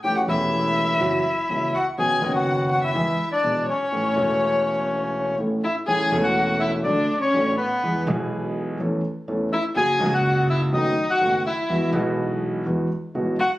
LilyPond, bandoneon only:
\new Staff \with { instrumentName = "Bandoneon" } { \time 4/4 \key a \major \tempo 4 = 124 g'16 fis'16 e'2. fis'8 | gis'8. fis'8. fis'16 e'4 d'8. cis'8~ | cis'2. r8 e''8 | gis''8. fis''8. e''8 d''8. cis''8. b'8~ |
b'8 r2. e''8 | gis''8. fis''8. e''8 dis''8. fis''8. e''8~ | e''8 r2. fis''8 | }